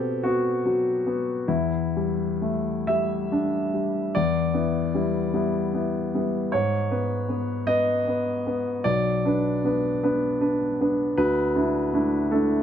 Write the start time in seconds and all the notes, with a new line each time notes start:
Already playing: B2 B3 C4 G4 A4
0.23 B3 F#4
0.66 F#3
1.07 B3
1.48 E2 E4
1.96 G3
2.42 A3
2.87 G3 E5
3.32 D4
3.74 G3
4.15 E2 D5
4.54 B3 E4
4.95 G3 B3 E4
5.34 G3 B3 E4
5.74 B3 E4
6.14 G3 B3 E4
6.52 G#2 C#5
6.91 B3 B4
7.29 B3 B4
7.67 B3 B4 D#5
8.08 B3 B4
8.47 B3 B4
8.84 B1 D5
9.25 D4 B4
9.64 B3 D4 B4
10.03 B3 D4 B4
10.41 D4 B4
10.81 B3 D4 B4
11.17 D2 B4
11.56 D4 E4
11.93 A3 D4 E4
12.31 A3 D4 E4 A4